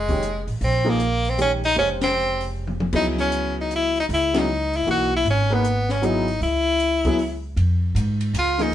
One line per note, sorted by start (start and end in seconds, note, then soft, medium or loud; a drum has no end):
0.00 0.43 F1 medium
0.00 0.48 G#3 medium
0.09 0.21 D#3 medium
0.09 0.21 G#3 medium
0.09 0.21 C#4 medium
0.09 0.22 G4 medium
0.09 kick medium
0.09 open hi-hat soft
0.23 closed hi-hat soft
0.47 0.60 A1 medium
0.47 open hi-hat soft
0.61 1.73 A#1 medium
0.61 0.91 C4 loud
0.61 open hi-hat soft
0.85 0.98 F3 medium
0.85 0.98 A#3 medium
0.85 0.98 D#4 medium
0.85 0.98 G#4 medium
0.89 1.31 A#3 medium
1.00 closed hi-hat soft
1.25 open hi-hat soft
1.29 1.41 C4 medium
1.37 1.60 D#3 medium
1.37 1.61 G#3 medium
1.37 1.61 C#4 soft
1.37 1.52 C#4 loud
1.37 1.61 G4 medium
1.37 closed hi-hat soft
1.64 1.77 D#4 loud
1.64 open hi-hat soft
1.76 2.89 F1 medium
1.76 2.84 C#3 soft
1.76 2.84 G#3 medium
1.76 1.89 C#4 medium
1.76 2.85 G4 medium
1.76 2.85 C5 medium
1.76 open hi-hat soft
2.01 2.46 C4 loud
2.01 snare medium
2.01 ride medium
2.41 open hi-hat soft
2.67 mid tom soft
2.80 mid tom medium
2.92 4.05 C#2 medium
2.92 4.00 F#3 medium
2.92 4.00 B3 soft
2.92 3.06 D#4 medium
2.92 4.01 E4 medium
2.92 4.01 G#4 medium
2.92 kick medium
2.92 crash medium
3.17 3.55 C#4 medium
3.17 snare soft
3.32 closed hi-hat soft
3.61 3.72 D#4 medium
3.71 closed hi-hat soft
3.75 3.96 E4 loud
3.96 open hi-hat soft
4.00 4.05 D#4 medium
4.09 4.82 C#2 medium
4.09 open hi-hat soft
4.14 4.40 E4 loud
4.34 4.46 F#3 medium
4.34 4.46 B3 medium
4.34 4.47 E4 medium
4.34 4.47 G#4 medium
4.34 snare medium
4.34 ride medium
4.39 4.78 D#4 medium
4.73 4.88 E4 medium
4.73 open hi-hat soft
4.86 5.23 B1 medium
4.86 5.09 E3 medium
4.86 5.09 A#3 soft
4.86 5.09 D#4 medium
4.86 5.09 F#4 medium
4.86 open hi-hat soft
4.90 5.12 F#4 loud
5.16 5.27 E4 loud
5.25 6.37 G#1 medium
5.25 open hi-hat soft
5.30 5.55 C#4 medium
5.50 5.63 A#3 medium
5.50 5.93 B3 medium
5.50 5.63 D#4 medium
5.50 5.63 G#4 medium
5.50 5.63 B4 medium
5.65 closed hi-hat soft
5.89 6.06 C#4 medium
5.89 snare soft
6.02 6.25 F#3 medium
6.02 6.25 B3 soft
6.02 6.42 D#4 medium
6.02 6.25 E4 medium
6.02 6.25 G#4 medium
6.02 closed hi-hat medium
6.28 open hi-hat soft
6.41 7.53 C#2 medium
6.41 7.40 E4 loud
6.41 open hi-hat soft
6.80 closed hi-hat soft
7.05 7.17 F#3 medium
7.05 7.18 B3 medium
7.05 7.18 E4 medium
7.05 7.18 G#4 medium
7.05 kick medium
7.05 open hi-hat soft
7.19 open hi-hat soft
7.56 7.94 F2 medium
7.56 ride medium
7.95 8.33 G#2 medium
7.95 hi-hat pedal medium
7.95 ride medium
8.21 ride medium
8.33 8.71 C#2 medium
8.33 hi-hat pedal medium
8.33 ride medium
8.38 8.64 F4 medium
8.58 8.71 F3 medium
8.58 8.72 A#3 medium
8.58 8.72 D#4 medium
8.58 8.72 G#4 medium
8.58 snare soft
8.58 ride soft
8.62 8.75 D#4 medium